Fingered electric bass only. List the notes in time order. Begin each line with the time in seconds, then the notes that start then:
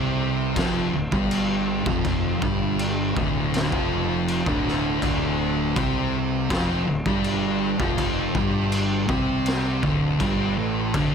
Already playing: C2
0.57 F1
0.94 D1
1.12 G1
1.86 F1
2.42 G1
3.17 D1
3.72 F1
4.47 D1
5.02 D1
5.76 C2
6.50 F1
6.88 D1
7.06 G1
7.79 F1
8.35 G1
9.09 C2
9.83 D1
10.20 G1
10.57 A1
10.94 D1